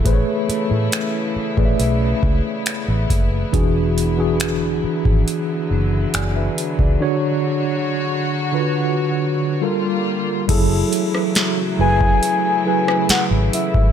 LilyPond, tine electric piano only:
\new Staff \with { instrumentName = "Tine electric piano" } { \time 4/4 \key fis \minor \tempo 4 = 69 << { r1 | r2. <d'' gis''>16 <b' e''>8 <gis' d''>16~ | <gis' d''>16 r2. r8. | r1 | } \\ { <a gis' b' c'' cis''>4~ <a gis' b' c'' cis''>16 r8 <a gis' b' d'' e''>4. r8. | <e d' fis' gis'>8 r16 <e d' fis' gis'>4. r4. r16 | <d d' fis' cis''>4~ <d d' fis' cis''>16 r8 <d d' f' fis' b'>4~ <d d' f' fis' b'>16 <g f' a' bes'>8. r16 | <fis e' gis' a'>4 r8 <fis e' gis' b'>8. r16 <fis e' gis' b'>4 r8 | } >> }